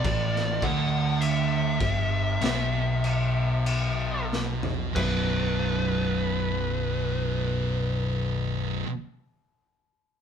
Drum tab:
CC |x-x-x-x-x-x-x---|x---------------|
SD |-o------o-----o-|----------------|
FT |---------------o|----------------|
BD |o-o---o---------|o---------------|